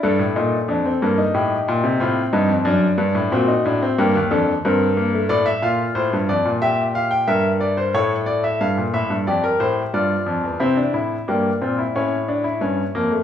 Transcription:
0.03 G2 D4 A4
0.19 A2
0.36 A#2 D#4
0.68 F2 D4
0.86 C4
1.02 G2 A#3
1.18 D#4
1.34 A2 G4
1.68 A#2
1.84 C3
2.00 A2 C4 F4
2.33 G2 D#4
2.49 F2
2.65 F#2 D4
2.98 G2
3.15 A2
3.32 A#2 C4 F#4
3.48 D#4
3.65 A2 D4
3.82 C4
3.98 G2 A#3 G4
4.15 D#2
4.31 F2 D4 A4
4.65 G2 C4 A#4
4.97 A#3
5.13 A3
5.29 A2 A4 D5
5.46 E5
5.62 A#2 F4 F5
5.95 A2 C5
6.13 G2
6.29 F2 D5
6.45 A#2
6.62 G4 E5
6.95 F5
7.11 G5
7.28 G2 A#4 E5
7.61 D5
7.77 C5
7.94 A2 A4 C#5
8.26 D5
8.44 E5
8.61 G2 F5
8.77 A#2
8.94 A2 E5
9.10 G2
9.27 F2 G4 D5
9.44 A#4
9.60 A2 C5
9.94 G2 F4 D5
10.26 F2
10.44 E2
10.60 C3 C4 E4 E5
10.77 D4
10.94 A2 E4
11.28 G2 A#3 G4 D5
11.62 A#2 C4 F4
11.78 E4
11.96 A2 C#4 C#5
12.28 D4
12.44 E4
12.61 G2 C#4
12.95 F2 A#3
13.11 A3

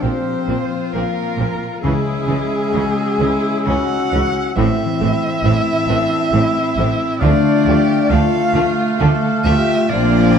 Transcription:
Already playing: A#2 F3 C4 F5 A5
0.01 A#1 A#2 F3 A#3 C4 F4 G4 C5
0.32 A#4
0.47 A#1 A#2 F3 A#3 C4 F4
0.62 C5
0.92 A#1 A#2 F3 A#3 C4 A#4 F5
1.23 C5
1.38 A#1 A#2 F3 A#3 C4
1.53 F4
1.82 C#2 C#3 E3 G#3 C#4 E4 G#4 E6
2.12 G#3
2.28 C#2 C#3 E3 G#3 C#4
2.43 C#4
2.72 C#2 C#3 E3 G#3 C#4 F#4
3.04 G#4
3.19 C#2 C#3 E3 G#3 C#4 E4
3.36 C#5
3.66 C#2 C#3 E3 G#3 C#4 D#4 F#4 F#5 G#5
3.98 C#5
4.12 C#2 C#3 E3 G#3 C#4
4.27 E4
4.56 A1 A2 E3 A3 C4 E4 E5 E6
4.85 E3
5.01 A1 A2 E3 A3 C4
5.14 C4
5.44 A1 A2 E3 A3 C4 E4
5.73 B4
5.88 A1 A2 E3 A3 C4 D4
6.02 C5
6.32 A1 A2 E3 A3 C4 E4 E5
6.62 C5
6.77 A1 A2 E3 A3 C4
6.92 E4
7.20 D2 D3 F3 A3 D4 F4 D5 F5
7.25 A3
7.51 D4
7.66 D2 D3 F3 A3 G4
7.81 A3
8.09 D2 D3 F3 A3 F4 A4 F5
8.39 A4
8.54 D2 D3 F3 A3 F4
8.98 D2 D3 F3 A3 A4 D5
9.30 A4
9.44 D2 D3 F3 A3 F4 G4 E5
9.89 A#1 A#2 F3 A#3 C4 D4 F4 D5 F5
10.18 F3
10.35 E4

